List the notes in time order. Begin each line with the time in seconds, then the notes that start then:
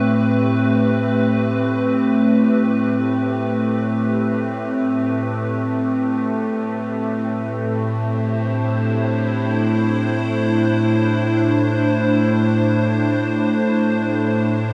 Already playing: A2 A3 C4 G4 B4
7.31 A2
7.79 C5
8.24 D4
8.42 E4
14.48 F#4